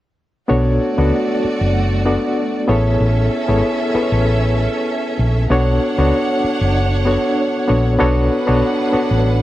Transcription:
0.48 fingered electric bass B1, string section A3 F#4 D5, reed electric piano B3 D4 F#4 A4 C#5
0.98 fingered electric bass C#2, reed electric piano B3 D4 F#4 A4 D5
1.44 muted fingered electric bass stroke
1.61 fingered electric bass F#1
2.05 reed electric piano B3 D4 F#4 A4 D5
2.68 fingered electric bass A1, reed electric piano B3 E4 G#4 A4 C#5, string section C#4 A4 E5
3.00 fingered electric bass A1
3.48 fingered electric bass G#1, reed electric piano B3 E4 G#4 A4 C#5
3.94 reed electric piano B3 E4 G#4 A4 B4, muted fingered electric bass stroke
4.02 reed electric piano C#5
4.12 fingered electric bass A1
5.19 fingered electric bass A#1
5.50 fingered electric bass B1, reed electric piano B3 D4 F#4 A4 C#5, string section D4 C#5 F#5
5.98 fingered electric bass C#2, reed electric piano B3 D4 F#4 A4 C#5
6.44 muted fingered electric bass stroke
6.61 fingered electric bass F#1
7.06 reed electric piano B3 D4 F#4 A4 C#5
7.68 fingered electric bass A#1, reed electric piano B3 D4 F#4 A4 C#5
7.99 fingered electric bass B1, reed electric piano B3 D4 F#4 A4 C#5, string section D4 B4 F#5
8.47 fingered electric bass B1, reed electric piano B3 D4 F#4 A4 C#5
8.92 reed electric piano B3 D4 F#4 A4 C#5, muted fingered electric bass stroke
9.11 fingered electric bass A1

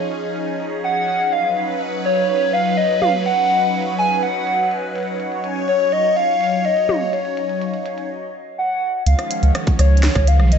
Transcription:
Already playing: analog synth pad F3 C#4 D#4 G#4, soft synth lead C#5
0.12 closed hi-hat
0.24 closed hi-hat
0.36 closed hi-hat
0.48 closed hi-hat
0.60 closed hi-hat
0.62 closed hi-hat
0.65 closed hi-hat
0.84 soft synth lead F#5, closed hi-hat
0.96 closed hi-hat
1.08 closed hi-hat
1.32 analog synth pad F#3 B4, soft synth lead F5, closed hi-hat
1.45 closed hi-hat
1.57 closed hi-hat
1.69 closed hi-hat
1.81 closed hi-hat
1.93 closed hi-hat
2.05 soft synth lead C#5, closed hi-hat
2.17 closed hi-hat
2.29 soft synth lead C#5, closed hi-hat
2.41 closed hi-hat
2.53 soft synth lead F5
2.65 closed hi-hat
2.77 soft synth lead D#5, closed hi-hat
2.90 closed hi-hat
3.02 soft synth lead F5, closed hi-hat, high tom
3.14 closed hi-hat
3.26 soft synth lead F#5, closed hi-hat
3.38 closed hi-hat
3.50 closed hi-hat
3.62 closed hi-hat
3.74 closed hi-hat
3.87 closed hi-hat
3.99 soft synth lead G#5, closed hi-hat
4.11 closed hi-hat
4.23 soft synth lead F#5, closed hi-hat
4.35 closed hi-hat
4.47 closed hi-hat
4.59 closed hi-hat
4.62 closed hi-hat
4.65 closed hi-hat
4.68 closed hi-hat
4.71 closed hi-hat
4.83 closed hi-hat
4.96 closed hi-hat
4.98 closed hi-hat
5.00 closed hi-hat
5.03 closed hi-hat
5.05 closed hi-hat
5.08 closed hi-hat
5.20 analog synth pad C#5, closed hi-hat
5.32 closed hi-hat
5.44 closed hi-hat
5.56 closed hi-hat
5.59 closed hi-hat
5.62 closed hi-hat
5.65 closed hi-hat
5.68 soft synth lead C#5, closed hi-hat
5.71 closed hi-hat
5.74 closed hi-hat
5.77 closed hi-hat
5.80 closed hi-hat
5.92 soft synth lead D#5, closed hi-hat
6.04 closed hi-hat
6.16 soft synth lead F5, closed hi-hat
6.41 closed hi-hat
6.44 closed hi-hat
6.47 closed hi-hat
6.50 closed hi-hat
6.53 closed hi-hat
6.56 closed hi-hat
6.59 closed hi-hat
6.62 closed hi-hat
6.65 soft synth lead D#5, closed hi-hat
6.77 closed hi-hat
6.89 high tom
7.01 closed hi-hat
7.13 soft synth lead C#5, closed hi-hat
7.25 closed hi-hat
7.37 closed hi-hat
7.49 closed hi-hat
7.62 closed hi-hat
7.74 closed hi-hat
7.86 closed hi-hat
7.98 closed hi-hat
8.58 soft synth lead F#5
9.06 sub bass C#2, analog synth pad D#3 F3 G#3 C#4, soft synth lead F5, closed hi-hat
9.19 cross-stick, closed hi-hat
9.31 closed hi-hat
9.43 sub bass C#2, closed hi-hat
9.55 cross-stick, closed hi-hat
9.67 kick, closed hi-hat
9.79 sub bass C#2, soft synth lead C#5, cross-stick, closed hi-hat
9.97 closed hi-hat
10.03 soft synth lead C#5, snare, closed hi-hat
10.15 sub bass C#2, kick, cross-stick, closed hi-hat
10.27 soft synth lead F5, closed hi-hat
10.39 sub bass B1, cross-stick
10.52 soft synth lead D#5, closed hi-hat

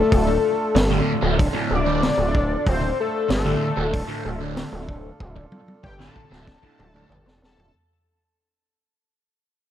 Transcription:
Already playing: harmonium D4 F4 A4, analog synth lead A4
0.12 analog synth bass D1, kick, open hi-hat
0.27 muted distorted electric guitar stroke
0.75 analog synth bass G1, muted distorted electric guitar stroke, snare, open hi-hat
0.90 distorted electric guitar D2 A2 D3
1.22 analog synth bass D1, distorted electric guitar D2 A2 D3
1.37 muted distorted electric guitar stroke, kick, open hi-hat
1.53 distorted electric guitar D2 A2 D3
1.71 analog synth bass D1
1.75 analog synth lead D5
1.85 distorted electric guitar D2 A2 D3
2.03 snare, open hi-hat
2.17 analog synth bass D1, muted distorted electric guitar stroke
2.35 kick
2.66 analog synth bass D1, analog synth lead C5, kick, open hi-hat
2.80 muted distorted electric guitar stroke
3.00 analog synth lead A4
3.28 analog synth bass G1, analog synth lead A4, muted distorted electric guitar stroke, snare, open hi-hat
3.45 distorted electric guitar D2 A2 D3
3.76 analog synth bass D1, distorted electric guitar D2 A2 D3
3.92 muted distorted electric guitar stroke, kick, open hi-hat
4.07 distorted electric guitar D2 A2 D3
4.25 analog synth bass D1
4.40 distorted electric guitar D2 A2 D3
4.57 snare, open hi-hat
4.72 analog synth bass D1, muted distorted electric guitar stroke
4.89 kick
5.20 analog synth bass D1, kick
5.35 muted distorted electric guitar stroke, kick
5.52 high tom
5.68 high tom
5.83 analog synth bass G1, analog synth lead G5, muted distorted electric guitar stroke, kick
5.99 distorted electric guitar D2 A2 D3, analog synth lead A5, snare
6.16 kick
6.30 analog synth bass D1, distorted electric guitar D2 A2 D3, snare
6.47 muted distorted electric guitar stroke, kick, snare
6.62 distorted electric guitar D2 A2 D3, kick
6.79 analog synth bass D1, mid tom
6.94 distorted electric guitar D2 A2 D3, mid tom
7.10 analog synth bass G1, floor tom
7.25 analog synth bass F1, muted distorted electric guitar stroke, snare
7.42 analog synth bass E1, analog synth lead A5, snare
7.57 analog synth bass D1, floor tom

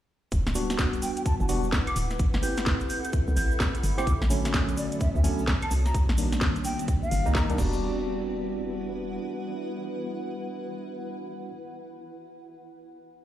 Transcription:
0.32 fm bass E1, ambient pad E4, kick, closed hi-hat, shaker
0.46 fm bass D1, ambient pad F#5, snare, shaker
0.51 tine electric piano G3 B3 D4 F#4, ambient pad B4, open hi-hat, shaker
0.70 snare, closed hi-hat, shaker
0.79 kick, snare, shaker
0.93 closed hi-hat, shaker
1.02 flute G5, open hi-hat, shaker
1.17 flute G5, closed hi-hat, shaker
1.26 flute A5, kick, closed hi-hat, shaker
1.40 fm bass G1, flute A5, shaker
1.49 fm bass E1, tine electric piano G3 B3 D4 F#4, open hi-hat, shaker
1.64 shaker
1.73 kick, snare, shaker
1.87 flute D6, closed hi-hat, claves, shaker
1.96 fm bass D1, open hi-hat, shaker
2.10 snare, closed hi-hat, shaker
2.19 fm bass A1, ambient pad A4, kick, closed hi-hat, shaker
2.33 fm bass G1, ambient pad E5, snare, shaker
2.43 tine electric piano C4 E4 G4 B4, flute G6, open hi-hat, shaker
2.57 snare, closed hi-hat, shaker
2.63 ambient pad B5, kick, snare, shaker
2.80 closed hi-hat, shaker
2.90 flute G6, open hi-hat, shaker
3.04 flute G6, closed hi-hat, shaker
3.13 kick, closed hi-hat, shaker
3.28 fm bass C2, shaker
3.36 fm bass A1, flute G6, open hi-hat, shaker
3.51 shaker
3.60 kick, snare, shaker
3.75 closed hi-hat, shaker
3.83 fm bass G1, open hi-hat, shaker
3.98 tine electric piano C4 E4 G4 C5, flute D6, snare, closed hi-hat, claves, shaker
4.07 fm bass B1, ambient pad B3, kick, closed hi-hat, shaker
4.16 ambient pad F#4
4.21 fm bass A1, snare, shaker
4.30 tine electric piano D3 F#3 A3 C#4, ambient pad C#5, open hi-hat, shaker
4.45 snare, closed hi-hat, shaker
4.54 kick, snare, shaker
4.68 closed hi-hat, shaker
4.77 flute D5, open hi-hat, shaker
4.92 flute D5, closed hi-hat, shaker
5.00 flute E5, kick, closed hi-hat, shaker
5.15 fm bass D2, flute E5, shaker
5.24 fm bass B1, tine electric piano D3 F#3 A3 C#4, open hi-hat, shaker
5.39 shaker
5.48 kick, snare, shaker
5.62 flute A5, closed hi-hat, claves, shaker
5.71 fm bass C2, ambient pad C4, open hi-hat, shaker
5.86 ambient pad G4, flute A#5, snare, closed hi-hat, shaker
5.94 fm bass C2, kick, closed hi-hat, shaker
6.02 ambient pad D5
6.09 fm bass A#1, snare, shaker
6.18 tine electric piano D#3 G3 A#3 D4, open hi-hat, shaker
6.32 snare, closed hi-hat, shaker
6.41 kick, snare, shaker
6.56 closed hi-hat, shaker
6.64 flute G5, open hi-hat, shaker
6.79 closed hi-hat, shaker
6.88 kick, closed hi-hat, shaker
7.03 flute F5, shaker
7.11 fm bass G1, open hi-hat, shaker
7.26 fm bass C2, tine electric piano D#3 G3 A#3 D#4, shaker
7.35 flute A#5, kick, snare, shaker
7.50 fm bass C2, tine electric piano D#3 G3 A#3 D4, flute A#5, closed hi-hat, shaker
7.58 fm bass E1, tine electric piano G3 B3 D4 F#4, ambient pad E4, kick, crash, shaker
7.67 ambient pad B4
7.73 shaker
7.98 ambient pad F#5

